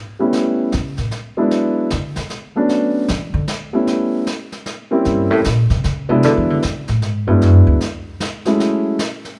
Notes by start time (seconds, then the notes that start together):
0.19 G3 A3 B3 C#4 E4
0.33 brush sweep, snare
0.72 C#3, snare
0.97 A2, snare
1.11 snare
1.37 F#3 G#3 B3 D4 E4
1.51 brush sweep, snare
1.90 D3, snare
2.16 B2, snare
2.30 snare
2.56 F#3 A3 B3 C#4 D4
2.69 brush sweep, snare
3.08 E3, snare
3.34 D3
3.48 snare
3.73 G3 A3 B3 C#4 E4
3.87 brush sweep, snare
4.27 snare
4.52 snare
4.66 snare
4.91 G3 A#3 C4 C#4 E4
5.05 G2, brush sweep, snare
5.31 A2
5.44 A#2, snare
5.70 C3, snare
5.84 C#3, snare
6.09 C3 F#3 G#3 B3 D4 E4
6.23 D3, brush sweep, snare
6.50 D3
6.62 C#3, snare
6.88 A2, snare
7.02 G#2, snare
7.27 G2 F#3 G#3 B3 D4 E4
7.41 F#2, brush sweep, snare
7.67 D2
7.81 snare
8.20 snare
8.45 F#3 G#3 A3 C#4 E4, snare
8.60 brush sweep, snare
8.99 snare
9.25 snare